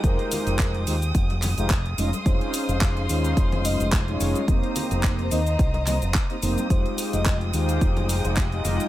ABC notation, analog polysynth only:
X:1
M:4/4
L:1/16
Q:"Swing 16ths" 1/4=108
K:Fm
V:1 name="Analog polysynth"
[A,EFGc]6 [A,EFGc] z4 [A,EFGc] z2 [A,DEFe] z | [A,DEFc]6 [A,DEFc]6- [A,DEFc] [A,DEFd]3 | [CGc]6 [B,CEGc] z3 [B,CEGe] z2 [B,CEGc] [B,CEGc]2 | [A,Gc]6 [A,EFGc]6- [A,EFGc] [A,EFGe]3 |]